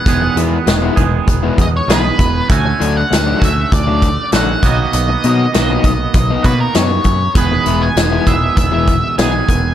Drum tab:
HH |xxxxxxxx|xxxxxxxx|xxxxxxxx|xxxxxxxx|
SD |--o---o-|--o---o-|--o---o-|--o---o-|
BD |o--ooo-o|o--ooo-o|---ooo-o|o--ooo-o|